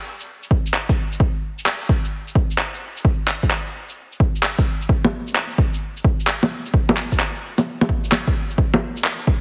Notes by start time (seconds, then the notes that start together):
0.20 shaker
0.43 shaker
0.51 kick
0.66 shaker
0.74 clap
0.89 kick, shaker
1.12 shaker
1.20 kick
1.59 shaker
1.66 clap
1.81 shaker
1.89 kick
2.05 shaker
2.28 shaker
2.35 kick
2.51 shaker
2.58 clap
2.74 shaker
2.97 shaker
3.05 kick
3.28 clap
3.43 kick, shaker
3.50 clap
3.66 shaker
3.89 shaker
4.12 shaker
4.20 kick
4.36 shaker
4.43 clap
4.59 kick, shaker
4.82 shaker
4.89 kick
5.05 low bongo
5.27 shaker
5.35 clap
5.51 shaker
5.58 kick
5.74 shaker
5.97 shaker
6.04 kick
6.20 shaker
6.27 clap
6.43 low bongo, shaker
6.66 shaker
6.74 kick
6.89 low bongo
6.97 clap
7.12 kick, shaker
7.20 clap
7.35 shaker
7.58 low bongo, shaker
7.81 low bongo, shaker
7.89 kick
8.04 shaker
8.12 clap, low bongo
8.27 kick, shaker
8.50 shaker
8.58 kick
8.74 low bongo
8.97 shaker
9.04 clap
9.20 shaker
9.27 kick